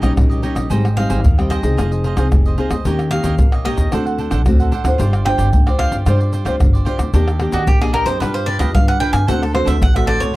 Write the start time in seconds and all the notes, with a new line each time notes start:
Already playing: A#2
0.02 A#1 G3 C#4 D#4 G4 C#5 D#5, pandeiro, tamborim, shaker, surdo
0.17 A#1 A#2, pandeiro, tamborim, shaker, surdo
0.30 G4 C#5 D#5, pandeiro, shaker
0.42 G3 C#4 D#4 G4 C#5 D#5, pandeiro
0.55 A#1 G4 C#5 D#5, pandeiro, tamborim, shaker, surdo
0.70 G#1 G#2 G3 C4 D#4 G#4 C5 D#5 G5, pandeiro, shaker, surdo
0.85 pandeiro, tamborim, shaker
0.96 G3 C4 D#4 G#4 C5 D#5 F5 G5, pandeiro, tamborim
1.10 G#1 G#4 C5 D#5 G5, pandeiro, shaker, surdo
1.24 D#2 D#3, pandeiro, shaker, surdo
1.38 G3 C4 D#4 C5 D#5 G5, pandeiro, tamborim, shaker
1.50 G#4 C5 D#5 G5, pandeiro, tamborim, shaker, surdo
1.63 C2 C4 D#4 G#4, pandeiro, shaker, surdo
1.77 F1 F3 F4 G#4 C5 D#5, pandeiro, tamborim, shaker, surdo
1.91 G#4 C5 D#5, pandeiro, shaker
2.04 F4 G#4 C5 D#5, pandeiro
2.17 C2 C4 D#4 F4 G#4 C5 D#5, pandeiro, tamborim, shaker, surdo
2.32 F1 C3, pandeiro, tamborim, shaker, surdo
2.45 G#4 C5 D#5, pandeiro, shaker
2.58 C4 D#4 F4 G#4 C5 D#5, pandeiro
2.70 D2 G#4 C5 D#5, pandeiro, tamborim, shaker, surdo
2.85 D#2 D#3 A#3 C#4 D#4 G4 C#5 D#5, pandeiro, shaker, surdo
2.99 pandeiro, tamborim, shaker
3.11 A#3 C#4 D#4 G4 C#5 D#5 F5, pandeiro, tamborim, shaker
3.24 D#2 D#4 G4 C#5 D#5, pandeiro, shaker, surdo
3.38 A#1 A#2, pandeiro, shaker, surdo
3.52 G4 C#5 D#5, pandeiro, tamborim, shaker
3.65 A#3 C#4 D#4 G4 C#5 D#5, pandeiro, tamborim, surdo
3.78 D#2, pandeiro, shaker, surdo
3.92 D2 D3 A3 C4 D4 F#4 A4 C5 F#5, pandeiro, tamborim, shaker, surdo
4.06 A4 C5 F#5, pandeiro, shaker
4.18 D4 A4 C5 F#5, pandeiro
4.31 A1 D4 A4 C5 F#5, pandeiro, tamborim, shaker, surdo
4.46 D2 A2 A3 C4 F#4, pandeiro, tamborim, shaker, surdo
4.59 A4 C5 F#5, pandeiro, shaker
4.71 D4 A4 C5 F#5, pandeiro
4.84 D2 D4 F4 A4 C5 F#5, pandeiro, tamborim, shaker, surdo
4.98 G1 G3 F4 G4 C5 D5, pandeiro, shaker, surdo
5.13 pandeiro, tamborim, shaker
5.25 D4 F4 G4 C5 D5 G5, pandeiro, tamborim
5.37 G1 F4 G4 C5 D5, pandeiro, shaker, surdo
5.53 D2 D3, pandeiro, shaker, surdo
5.66 D4 F4 G4 C5 D5, pandeiro, tamborim, shaker
5.79 F4 G4 C5 D5 F5, pandeiro, tamborim, surdo
5.92 G1, pandeiro, shaker, surdo
6.06 G2 G3 D4 F4 G4 C5 D5, pandeiro, tamborim, shaker, surdo
6.20 G4 C5 D5, pandeiro, shaker
6.32 F4 G4 C5 D5, pandeiro, shaker
6.45 D2 D4 F4 G4 C5 D5, pandeiro, tamborim, shaker, surdo
6.60 G1 D3, pandeiro, tamborim, shaker, surdo
6.73 G4 C5 D5, pandeiro, shaker
6.85 D4 F4 G4 C5 D5, pandeiro
6.98 D2 G4 C5 D5, pandeiro, tamborim, shaker, surdo
7.13 D#2 D#3 A#3 D4 G4 D5 D#5, pandeiro, shaker, surdo
7.28 pandeiro, tamborim, shaker
7.40 A#3 D4 G4 D5 D#5, pandeiro, tamborim
7.52 D#2 D4 F#4 G4 D5 D#5, pandeiro, shaker, surdo
7.67 A#1 A#2 G4, pandeiro, shaker, surdo
7.81 A#3 D4 G4 G#4 D5 D#5, pandeiro, tamborim, shaker
7.93 D4 G4 A#4 D5 D#5, pandeiro, tamborim, surdo
8.06 F#2 C5, pandeiro, shaker, surdo
8.20 G2 G3 D4 F4 G4 B4 F5, pandeiro, tamborim, shaker, surdo
8.34 G4 B4 C5 F5, pandeiro, shaker
8.46 D4 G4 B4 D5 F5, pandeiro
8.59 D2 D4 F4 G4 B4 D#5 F5, pandeiro, tamborim, shaker, surdo
8.74 G2 D3 F5, pandeiro, tamborim, shaker, surdo
8.88 G4 B4 F5 F#5, pandeiro, shaker
9.00 D4 F4 G4 B4 F5 G5, pandeiro
9.12 G2 G4 B4 F5 G#5, pandeiro, tamborim, shaker, surdo
9.27 D2 D3 A3 C4 D4 F#4 A4 C5 F#5, pandeiro, shaker, surdo
9.43 A4, pandeiro, tamborim, shaker
9.53 A3 C4 D4 F#4 A4 C5 F#5, pandeiro, tamborim
9.65 D2 D4 A4 C5 E5 F#5, pandeiro, shaker, surdo
9.81 A1 A2 F#5, pandeiro, shaker, surdo
9.94 A3 C4 F#4 A4 C5 E5 F#5, pandeiro, tamborim, shaker
10.06 D4 A4 C5 D5 F#5, pandeiro, tamborim
10.20 D2 C#5, pandeiro, shaker, surdo